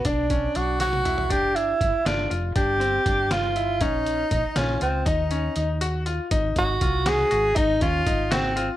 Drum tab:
HH |x-x-x-x-x-|x-x-x-x-x-|x-x-x-x-x-|x-x-x-x-x-|
SD |------o---|------o---|------o---|------o---|
T1 |-------o--|----------|----------|----------|
T2 |--------o-|----------|----------|----------|
FT |---------o|----------|----------|----------|
BD |o-o-------|o---o-----|o---o-----|o---o-----|

HH |x-x-x-x-x-|x-x-x-x-x-|x-x-x-x-x-|
SD |----------|------o---|------o---|
T1 |----------|----------|----------|
T2 |----------|----------|----------|
FT |----------|----------|----------|
BD |o---------|o-o-o-----|o-o-o-----|